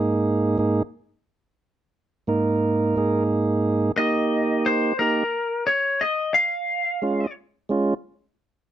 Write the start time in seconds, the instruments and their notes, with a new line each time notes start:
Already playing: tonewheel organ G#2 A#3 D#4 G#4
0.58 tonewheel organ G#2 A#3 D#4 G#4
2.27 tonewheel organ G#2 A#3 D#4 A#4
2.96 tonewheel organ G#2 A#3 D#4 G#4
3.97 tonewheel organ A#3 D#4 G4, lead electric guitar D#5
4.66 lead electric guitar C5
4.99 tonewheel organ A#3 D#4 G4, lead electric guitar A#4
5.67 lead electric guitar C#5
6.01 lead electric guitar D#5
6.34 lead electric guitar F5
7.02 tonewheel organ G#3 C#4 F4
7.69 tonewheel organ G#3 C#4 F4